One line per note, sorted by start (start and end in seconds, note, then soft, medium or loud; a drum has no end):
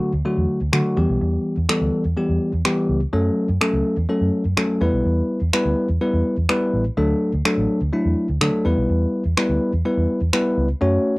0.00 0.11 D3 medium
0.00 0.11 F#3 medium
0.00 0.11 A3 medium
0.00 0.11 F#4 loud
0.13 0.21 D2 medium
0.25 0.59 D3 medium
0.25 0.59 F#3 medium
0.25 0.59 A3 medium
0.25 0.59 F#4 medium
0.37 0.45 E2 medium
0.61 0.69 D2 medium
0.73 0.97 D3 medium
0.73 0.81 D3 medium
0.73 0.97 F#3 medium
0.73 0.97 A3 medium
0.73 0.97 F#4 loud
0.73 finger snap loud
0.97 1.05 E2 medium
0.97 1.55 E3 medium
0.97 1.55 G3 medium
0.97 1.55 B3 medium
0.97 1.55 G4 medium
1.09 1.17 B1 medium
1.21 1.36 E2 loud
1.57 1.65 E2 medium
1.69 2.03 E3 medium
1.69 2.03 G3 medium
1.69 2.03 B3 medium
1.69 2.03 A4 loud
1.69 finger snap loud
1.81 1.89 D2 medium
2.05 2.13 E2 medium
2.17 2.51 E3 medium
2.17 2.51 G3 medium
2.17 2.51 B3 medium
2.17 2.51 G4 medium
2.29 2.37 E2 medium
2.53 2.61 E2 medium
2.65 2.99 E3 medium
2.65 2.99 G3 medium
2.65 2.99 B3 medium
2.65 2.99 G4 loud
2.65 finger snap loud
2.89 3.04 C#2 medium
3.13 3.28 F#2 loud
3.13 3.47 F#3 medium
3.13 3.47 A3 medium
3.13 3.47 C#4 medium
3.13 3.47 A4 loud
3.49 3.57 F#2 medium
3.61 3.95 F#3 medium
3.61 3.95 A3 medium
3.61 3.95 C#4 medium
3.61 3.95 A4 loud
3.61 finger snap loud
3.73 3.81 C#2 medium
3.97 4.05 E2 medium
4.09 4.43 F#3 medium
4.09 4.43 A3 medium
4.09 4.43 C#4 medium
4.09 4.44 A4 medium
4.21 4.29 F#2 medium
4.45 4.53 F#2 medium
4.57 4.65 F#3 medium
4.57 4.81 F#3 loud
4.57 4.81 A3 medium
4.57 4.81 C#4 medium
4.57 4.81 A4 loud
4.57 finger snap loud
4.81 4.89 E2 medium
4.81 5.39 G3 medium
4.81 5.39 B3 medium
4.81 5.39 E4 medium
4.81 5.39 B4 medium
4.93 5.01 B1 medium
5.05 5.20 E2 loud
5.41 5.49 E2 medium
5.53 5.87 G3 medium
5.53 5.87 B3 medium
5.53 5.87 E4 medium
5.53 5.87 B4 loud
5.53 finger snap loud
5.65 5.73 D2 medium
5.89 5.97 E2 medium
6.01 6.35 G3 medium
6.01 6.35 B3 medium
6.01 6.35 E4 medium
6.01 6.35 B4 medium
6.13 6.21 E2 medium
6.37 6.45 E2 medium
6.49 6.83 G3 loud
6.49 6.83 B3 medium
6.49 6.83 E4 medium
6.49 6.83 B4 loud
6.49 finger snap loud
6.73 6.88 A1 medium
6.97 7.12 D2 loud
6.97 7.31 F#3 medium
6.97 7.31 A3 medium
6.97 7.31 D4 medium
6.97 7.32 A4 loud
7.33 7.41 D2 medium
7.45 7.79 F#3 loud
7.45 7.79 A3 medium
7.45 7.79 D4 medium
7.45 7.79 A4 loud
7.45 finger snap loud
7.57 7.65 A1 medium
7.81 7.89 D2 medium
7.93 8.27 F#3 medium
7.93 8.27 A3 medium
7.93 8.27 D4 medium
7.93 8.27 E4 medium
8.05 8.13 E2 medium
8.29 8.37 D2 medium
8.41 8.49 D3 medium
8.41 8.65 F#3 medium
8.41 8.65 A3 medium
8.41 8.65 D4 medium
8.41 8.65 A4 loud
8.41 finger snap loud
8.65 8.73 E2 medium
8.65 9.23 G3 medium
8.65 9.23 B3 medium
8.65 9.23 E4 medium
8.65 9.23 B4 medium
8.77 8.85 B1 medium
8.89 9.05 E2 loud
9.25 9.33 E2 medium
9.37 9.71 G3 medium
9.37 9.71 B3 medium
9.37 9.71 E4 medium
9.37 9.71 B4 loud
9.37 finger snap loud
9.49 9.57 D2 medium
9.73 9.81 E2 medium
9.85 10.19 G3 medium
9.85 10.19 B3 medium
9.85 10.19 E4 medium
9.85 10.19 B4 medium
9.97 10.05 E2 medium
10.21 10.29 E2 medium
10.33 10.67 G3 medium
10.33 10.67 B3 medium
10.33 10.67 E4 medium
10.33 10.67 B4 loud
10.33 finger snap loud
10.57 10.72 C#2 medium
10.81 10.97 F#2 loud
10.81 11.15 A3 medium
10.81 11.15 C#4 medium
10.81 11.15 F#4 medium
10.81 11.15 C#5 loud